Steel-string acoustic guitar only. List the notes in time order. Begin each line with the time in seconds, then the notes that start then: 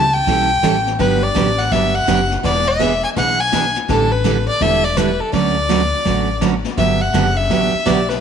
0.27 E3 G3 C#4 E4 A4
0.63 E3 G3 C#4 E4 A4
0.99 D3 F#3 B3 D4 G4
1.35 D3 F#3 B3 D4 G4
1.71 D3 F#3 B3 D4 G4
2.07 D3 F#3 B3 D4 G4
2.43 E3 B3 D4 G#4
2.79 E3 B3 D4 G#4
3.16 E3 B3 D4 G#4
3.52 E3 B3 D4 G#4
3.88 D3 G3 D4 E4 A4
4.24 D3 G3 D4 E4 A4
4.61 D3 G3 D4 E4 A4
4.97 D3 G3 D4 E4 A4
5.32 D3 F#3 A3 C#4 F#4
5.69 D3 F#3 A3 C#4 F#4
6.05 D3 F#3 A3 C#4 F#4
6.41 D3 F#3 A3 C#4 F#4
6.77 D3 F#3 B3 D4 G4
7.14 D3 F#3 B3 D4 G4
7.50 D3 F#3 B3 D4 G4
7.85 D3 F#3 B3 D4 G4